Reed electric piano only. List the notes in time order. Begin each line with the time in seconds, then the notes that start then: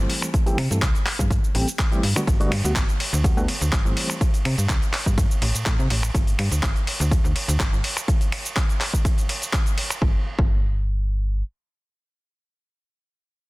Already playing: E3 G3
0.00 A3 C4 C5
0.46 E3 G3 A3 C4 G4
0.70 E3 G3 A3 C4 A4
1.54 E3 G3 A3 C4 G4
1.91 E3 G3 A3 C4 G4
2.16 D3 G3 A3 B3 F#4
2.40 D3 G3 A3 B3 F#4
2.64 D3 G3 A3 B3 F#4
3.24 D3 G3 A3 B3 F#4
3.37 D3 G3 A3 B3 F#4
3.85 E3 G3 A3 C4 C5